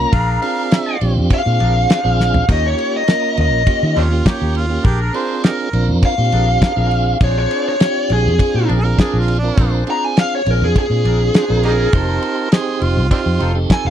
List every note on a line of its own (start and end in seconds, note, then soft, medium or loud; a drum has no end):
0.00 0.13 A#3 medium
0.00 0.13 C#4 medium
0.00 0.13 F4 medium
0.00 0.14 A#4 loud
0.00 0.99 A#5 medium
0.13 0.37 A#1 medium
0.13 0.72 D4 medium
0.13 0.72 G#4 medium
0.13 0.72 A#4 medium
0.13 0.41 F5 loud
0.13 kick loud
0.13 ride medium
0.42 0.97 C4 medium
0.42 0.97 D4 medium
0.42 0.97 F4 medium
0.42 0.97 G#4 loud
0.42 1.14 F5 loud
0.42 ride medium
0.71 snare loud
0.71 ride medium
1.01 1.18 A#1 medium
1.01 1.42 C4 medium
1.01 1.42 D4 medium
1.01 1.43 F4 medium
1.01 1.43 G4 medium
1.01 ride medium
1.17 1.28 F2 medium
1.30 2.47 F5 medium
1.30 kick medium
1.30 ride medium
1.45 1.58 A#2 medium
1.45 2.00 C4 medium
1.45 2.00 D4 medium
1.45 2.00 F4 medium
1.45 2.01 G#4 medium
1.60 1.85 A#1 medium
1.60 1.75 D4 medium
1.60 1.75 G#4 medium
1.60 1.76 A#4 medium
1.60 ride medium
1.88 2.18 D4 medium
1.88 2.19 G#4 medium
1.88 2.19 C5 medium
1.88 snare loud
1.88 ride medium
2.04 2.41 A#1 medium
2.04 2.45 C4 medium
2.04 2.45 D4 medium
2.04 2.46 F4 medium
2.04 2.46 G#4 loud
2.20 snare medium
2.34 floor tom medium
2.48 2.73 D#2 medium
2.48 3.03 A#3 medium
2.48 3.03 C#4 medium
2.48 3.07 D#4 medium
2.48 3.04 F4 medium
2.48 3.08 G4 medium
2.48 3.04 G4 medium
2.48 3.08 C#5 medium
2.48 2.65 D#5 medium
2.48 kick loud
2.48 ride medium
2.48 splash medium
2.66 2.94 C#5 medium
2.78 ride medium
2.96 3.38 D#5 medium
3.08 3.63 A#3 medium
3.08 3.63 C#4 medium
3.08 3.63 F4 medium
3.08 3.64 A#4 medium
3.08 snare medium
3.08 ride medium
3.37 3.52 D#2 medium
3.37 3.97 D#5 medium
3.37 ride medium
3.52 3.64 A#1 medium
3.66 4.08 A#3 medium
3.66 4.08 C#4 medium
3.66 4.08 F4 medium
3.66 4.09 G4 medium
3.66 kick medium
3.66 ride medium
3.83 3.94 D#3 medium
3.95 4.21 D#2 medium
3.95 4.03 C4 medium
3.95 4.05 D4 medium
3.95 4.11 D#4 medium
3.95 4.28 F4 medium
3.95 4.11 G4 medium
3.95 4.11 C#5 medium
3.95 ride medium
4.11 4.66 A#3 medium
4.11 4.66 C#4 medium
4.11 4.66 F4 medium
4.11 4.67 G4 medium
4.26 4.56 D#4 medium
4.26 4.56 G4 medium
4.26 4.55 G4 medium
4.26 4.56 C#5 medium
4.26 kick medium
4.26 snare loud
4.26 ride medium
4.42 4.77 D#2 medium
4.55 4.85 F4 medium
4.55 ride medium
4.69 4.85 A#3 medium
4.69 4.85 C#4 medium
4.69 4.85 F4 medium
4.69 4.85 G4 medium
4.83 5.09 A#1 medium
4.83 5.43 D4 medium
4.83 5.02 G4 medium
4.83 5.44 G#4 medium
4.83 5.44 A#4 loud
4.83 kick loud
4.83 ride medium
5.01 5.14 A#4 medium
5.13 5.69 C4 medium
5.13 5.69 D4 medium
5.13 5.69 F4 medium
5.13 5.69 G#4 medium
5.13 5.43 C5 medium
5.13 ride medium
5.44 5.50 D#4 medium
5.44 5.50 G4 medium
5.44 5.87 A#4 medium
5.44 snare loud
5.44 ride medium
5.73 5.90 A#1 medium
5.73 6.15 C4 medium
5.73 6.15 D4 medium
5.73 6.15 F4 medium
5.73 6.15 A#4 loud
5.73 ride medium
5.89 6.01 F2 medium
6.03 7.19 F5 medium
6.03 kick medium
6.03 ride medium
6.18 6.30 A#2 medium
6.18 6.73 C4 medium
6.18 6.73 D4 medium
6.18 6.73 F4 medium
6.18 6.73 G4 medium
6.32 6.57 A#1 medium
6.32 6.48 D4 medium
6.32 6.48 G#4 medium
6.32 6.48 A#4 medium
6.32 ride medium
6.62 6.92 D4 medium
6.62 6.92 G#4 medium
6.62 6.92 A#4 medium
6.62 kick medium
6.62 snare loud
6.62 ride medium
6.76 7.13 A#1 medium
6.76 7.18 C4 loud
6.76 7.18 D4 loud
6.76 7.18 F4 medium
6.76 7.18 G#4 loud
6.91 ride medium
7.20 7.45 A#1 medium
7.20 7.76 C4 medium
7.20 7.80 D4 medium
7.20 7.76 D4 medium
7.20 7.76 F4 medium
7.20 7.80 G#4 medium
7.20 7.77 G#4 medium
7.20 7.81 C5 medium
7.20 7.37 C#5 medium
7.20 kick loud
7.20 ride medium
7.39 7.66 C#5 medium
7.51 ride medium
7.69 8.10 C#5 medium
7.80 8.35 C4 medium
7.80 8.35 D4 medium
7.80 8.35 F4 medium
7.80 8.36 G4 medium
7.80 snare loud
7.80 ride medium
8.10 8.27 A#1 medium
8.10 8.69 G#4 medium
8.10 ride medium
8.26 8.37 F2 medium
8.38 8.80 C4 medium
8.38 8.80 D4 medium
8.38 8.81 F4 medium
8.38 8.81 G#4 medium
8.38 kick medium
8.38 ride medium
8.54 8.66 A#2 medium
8.68 8.94 A#1 medium
8.68 8.84 D4 medium
8.68 8.84 G#4 medium
8.68 8.84 A#4 medium
8.68 ride medium
8.80 9.38 C4 medium
8.80 8.98 A#4 loud
8.84 9.39 D4 medium
8.84 9.39 F4 medium
8.84 9.39 G#4 medium
8.98 9.28 D4 medium
8.98 9.18 G#4 medium
8.98 9.29 G#4 medium
8.98 9.29 A#4 medium
8.98 kick medium
8.98 snare loud
8.98 ride medium
9.14 9.50 A#1 medium
9.19 9.38 F4 medium
9.28 ride medium
9.39 9.84 C4 medium
9.39 9.72 D4 medium
9.43 9.84 D4 medium
9.43 9.84 F4 medium
9.43 9.85 A#4 loud
9.57 9.82 A#1 medium
9.57 10.17 D4 medium
9.57 10.17 G#4 medium
9.57 10.17 C5 medium
9.57 kick loud
9.57 ride medium
9.87 10.42 C4 medium
9.87 10.42 D4 medium
9.87 10.42 F4 medium
9.87 10.42 G#4 medium
9.87 10.04 A#5 medium
9.87 ride medium
10.04 10.17 G#5 medium
10.17 10.32 F5 medium
10.17 snare loud
10.17 ride medium
10.35 10.50 C#5 medium
10.45 10.62 A#1 medium
10.45 10.87 C4 medium
10.45 10.87 D4 medium
10.45 10.87 F4 medium
10.45 10.88 G#4 medium
10.45 ride medium
10.50 10.63 A#4 medium
10.61 10.73 F2 medium
10.61 10.77 G#4 medium
10.76 11.92 G#4 medium
10.76 kick medium
10.76 ride medium
10.90 11.02 A#2 medium
10.90 11.45 C4 medium
10.90 11.45 D4 medium
10.90 11.45 F4 medium
10.90 11.46 G#4 medium
11.05 11.29 A#1 medium
11.05 11.20 D4 medium
11.05 11.20 G#4 medium
11.05 11.20 A#4 medium
11.05 ride medium
11.34 11.64 D4 medium
11.34 11.65 G#4 medium
11.34 11.65 C5 medium
11.34 snare loud
11.34 ride medium
11.48 11.86 A#1 medium
11.48 11.90 C4 medium
11.48 11.90 D4 medium
11.48 11.90 F4 medium
11.48 11.91 A#4 loud
11.63 11.71 D#4 medium
11.63 11.72 G4 medium
11.63 12.50 A#4 loud
11.63 ride medium
11.93 12.18 F1 medium
11.93 12.48 C4 loud
11.93 12.52 D#4 medium
11.93 12.49 D#4 medium
11.93 12.53 F4 medium
11.93 12.49 G4 medium
11.93 12.49 C5 loud
11.93 12.53 A5 medium
11.93 kick loud
11.93 ride medium
12.22 ride medium
12.52 13.07 C4 medium
12.52 13.07 D#4 medium
12.52 13.07 G4 medium
12.52 12.83 G#4 medium
12.52 13.07 C5 loud
12.52 snare loud
12.52 ride medium
12.82 12.98 F1 medium
12.82 13.10 F4 medium
12.82 ride medium
12.97 13.09 C2 medium
13.11 13.52 C4 medium
13.11 13.19 C4 medium
13.11 13.19 D4 medium
13.11 13.52 D#4 medium
13.11 13.54 F4 loud
13.11 13.53 G4 medium
13.11 13.53 C5 loud
13.11 kick medium
13.11 ride medium
13.26 13.38 F2 medium
13.40 13.65 F1 medium
13.40 13.56 D#4 medium
13.40 13.56 F4 medium
13.40 13.56 A4 loud
13.40 ride medium
13.55 13.90 C4 medium
13.55 13.90 D#4 medium
13.55 13.90 G4 medium
13.55 13.90 A4 medium
13.69 13.90 D#4 medium
13.69 13.90 F4 medium
13.69 13.90 A4 medium
13.69 13.86 G#5 medium
13.69 kick medium
13.69 snare loud
13.69 ride medium
13.85 13.90 F1 medium
13.85 13.90 F5 medium